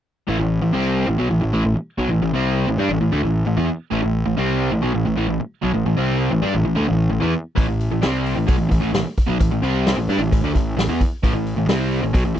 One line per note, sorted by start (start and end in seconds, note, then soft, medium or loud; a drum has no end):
0.27 0.39 A1 medium
0.27 0.38 A2 medium
0.27 0.39 E3 medium
0.39 0.61 A1 medium
0.39 0.57 A2 medium
0.39 0.58 E3 medium
0.62 0.73 A1 medium
0.62 0.72 A2 soft
0.62 0.73 E3 medium
0.73 1.06 C2 medium
0.73 1.06 C3 medium
0.73 1.07 G3 medium
0.73 1.07 C4 medium
1.07 1.18 A1 medium
1.07 1.18 A2 medium
1.07 1.19 E3 medium
1.18 1.30 B1 medium
1.18 1.29 B2 medium
1.18 1.30 F#3 medium
1.30 1.41 A1 medium
1.30 1.40 A2 medium
1.30 1.40 E3 medium
1.41 1.53 A1 medium
1.41 1.52 A2 medium
1.41 1.52 E3 medium
1.53 1.64 A1 medium
1.53 1.64 A2 medium
1.53 1.64 E3 medium
1.65 1.75 A1 medium
1.65 1.75 A2 soft
1.65 1.76 E3 medium
1.76 muted overdriven electric guitar stroke medium
1.76 muted picked electric bass stroke soft
1.98 2.09 B1 medium
1.98 2.09 B2 medium
1.98 2.10 F#3 medium
2.09 2.20 A1 medium
2.09 2.21 A2 medium
2.09 2.21 E3 medium
2.22 2.33 A1 medium
2.22 2.33 A2 medium
2.22 2.33 E3 medium
2.33 2.65 C2 medium
2.33 2.67 C3 medium
2.33 2.67 G3 medium
2.33 2.68 C4 medium
2.67 2.77 A1 medium
2.67 2.79 A2 medium
2.67 2.78 E3 medium
2.78 2.89 G2 medium
2.78 2.89 G3 medium
2.78 2.90 D4 medium
2.89 3.00 A1 medium
2.89 3.00 A2 soft
2.89 3.00 E3 medium
3.01 3.12 A1 medium
3.01 3.12 A2 medium
3.01 3.13 E3 medium
3.12 3.23 D2 medium
3.12 3.23 D3 medium
3.12 3.23 A3 medium
3.23 3.45 A1 medium
3.23 3.42 A2 soft
3.23 3.42 E3 medium
3.46 3.57 A1 medium
3.46 3.56 A2 soft
3.46 3.56 E3 soft
3.57 3.69 E2 medium
3.57 3.68 E3 medium
3.57 3.69 B3 medium
3.91 4.03 A1 medium
3.91 4.01 A2 medium
3.91 4.02 E3 medium
4.02 4.25 A1 medium
4.02 4.21 A2 medium
4.02 4.22 E3 medium
4.26 4.37 A1 medium
4.26 4.37 A2 medium
4.26 4.37 E3 medium
4.37 4.70 C2 medium
4.37 4.71 C3 medium
4.37 4.72 G3 medium
4.37 4.72 C4 medium
4.72 4.82 A1 medium
4.72 4.81 A2 medium
4.72 4.83 E3 medium
4.82 4.94 B1 medium
4.82 4.94 B2 medium
4.82 4.94 F#3 medium
4.94 5.05 A1 medium
4.94 5.04 A2 medium
4.94 5.05 E3 medium
5.05 5.17 A1 medium
5.05 5.15 A2 medium
5.05 5.16 E3 medium
5.16 5.28 A1 medium
5.16 5.27 A2 medium
5.16 5.27 E3 medium
5.28 5.40 A1 medium
5.28 5.39 A2 medium
5.28 5.40 E3 medium
5.40 muted overdriven electric guitar stroke soft
5.40 muted picked electric bass stroke soft
5.62 5.74 B1 medium
5.62 5.74 B2 medium
5.62 5.74 F#3 medium
5.74 5.86 A1 medium
5.74 5.85 A2 medium
5.74 5.85 E3 medium
5.86 5.97 A1 medium
5.86 5.96 A2 medium
5.86 5.97 E3 medium
5.97 6.30 C2 medium
5.97 6.31 C3 medium
5.97 6.31 G3 medium
5.97 6.32 C4 medium
6.31 6.42 A1 medium
6.31 6.43 A2 medium
6.31 6.42 E3 medium
6.42 6.54 G2 medium
6.42 6.53 G3 medium
6.42 6.54 D4 medium
6.53 6.65 A1 medium
6.53 6.64 A2 medium
6.53 6.64 E3 medium
6.65 6.77 A1 medium
6.65 6.75 A2 soft
6.65 6.76 E3 soft
6.75 6.89 D2 medium
6.75 6.87 D3 medium
6.75 6.88 A3 medium
6.88 7.11 A1 medium
6.88 7.07 A2 medium
6.88 7.07 E3 medium
7.10 7.21 A1 medium
7.10 7.20 A2 medium
7.10 7.19 E3 medium
7.20 7.33 E2 medium
7.20 7.33 E3 medium
7.20 7.33 B3 medium
7.55 7.68 A1 medium
7.55 7.67 A2 medium
7.55 7.67 E3 medium
7.55 kick medium
7.55 open hi-hat medium
7.68 7.90 A1 medium
7.68 7.87 A2 medium
7.68 7.87 E3 medium
7.80 open hi-hat soft
7.91 8.03 A1 medium
7.91 8.02 A2 medium
7.91 8.01 E3 medium
8.02 8.36 C2 medium
8.02 8.36 C3 medium
8.02 8.36 G3 medium
8.02 8.37 C4 medium
8.02 snare loud
8.02 open hi-hat medium
8.26 open hi-hat soft
8.36 8.48 A1 medium
8.36 8.46 A2 medium
8.36 8.47 E3 medium
8.47 8.59 B1 medium
8.47 8.57 B2 medium
8.47 8.58 F#3 medium
8.47 kick loud
8.47 open hi-hat medium
8.58 8.71 A1 medium
8.58 8.68 A2 soft
8.58 8.68 E3 medium
8.69 8.82 A1 medium
8.69 8.79 A2 medium
8.69 8.81 E3 medium
8.69 kick medium
8.69 open hi-hat soft
8.80 8.93 A1 medium
8.80 8.91 A2 medium
8.80 8.92 E3 medium
8.93 9.05 A1 medium
8.93 9.03 A2 medium
8.93 9.05 E3 medium
8.93 snare loud
8.93 open hi-hat medium
9.05 muted overdriven electric guitar stroke medium
9.05 muted picked electric bass stroke soft
9.17 kick medium
9.17 open hi-hat soft
9.27 9.40 B1 medium
9.27 9.39 B2 medium
9.27 9.39 F#3 medium
9.40 9.51 A1 medium
9.40 9.51 A2 medium
9.40 9.50 E3 medium
9.40 kick medium
9.40 open hi-hat medium
9.51 9.62 A1 medium
9.51 9.62 A2 medium
9.51 9.62 E3 medium
9.62 9.95 C2 medium
9.62 9.96 C3 medium
9.62 9.97 G3 medium
9.62 9.97 C4 medium
9.62 open hi-hat soft
9.87 snare medium
9.87 open hi-hat medium
9.97 10.07 A1 medium
9.97 10.09 A2 medium
9.97 10.09 E3 medium
10.08 10.18 G2 medium
10.08 10.19 G3 medium
10.08 10.20 D4 medium
10.08 open hi-hat soft
10.19 10.30 A1 medium
10.19 10.30 A2 medium
10.19 10.32 E3 medium
10.31 10.41 A1 medium
10.31 10.43 A2 soft
10.31 10.44 E3 medium
10.31 kick loud
10.31 open hi-hat medium
10.41 10.53 D2 medium
10.41 10.53 D3 medium
10.41 10.54 A3 medium
10.54 10.76 A1 medium
10.54 10.73 A2 medium
10.54 10.73 E3 medium
10.54 kick medium
10.54 open hi-hat soft
10.77 10.88 A1 medium
10.77 10.88 A2 medium
10.77 10.88 E3 medium
10.77 snare loud
10.77 open hi-hat medium
10.88 10.99 E2 medium
10.88 11.00 E3 medium
10.88 11.00 B3 medium
11.01 kick medium
11.01 open hi-hat soft
11.23 11.33 A1 medium
11.23 11.34 A2 medium
11.23 11.34 E3 medium
11.23 kick medium
11.23 open hi-hat soft
11.33 11.55 A1 medium
11.33 11.53 A2 medium
11.33 11.53 E3 medium
11.47 open hi-hat soft
11.56 11.67 A1 medium
11.56 11.68 A2 soft
11.56 11.69 E3 medium
11.68 12.00 C2 medium
11.68 12.01 C3 medium
11.68 12.02 G3 medium
11.68 12.03 C4 medium
11.68 snare loud
11.68 open hi-hat medium
11.92 open hi-hat soft
12.01 12.14 A1 medium
12.01 12.13 A2 medium
12.01 12.13 E3 medium
12.13 12.25 B1 medium
12.13 12.25 B2 medium
12.13 12.25 F#3 medium
12.13 kick loud
12.13 open hi-hat medium
12.25 12.36 A1 medium
12.25 12.34 A2 medium
12.25 12.34 E3 medium
12.35 12.40 A2 soft
12.35 12.40 E3 medium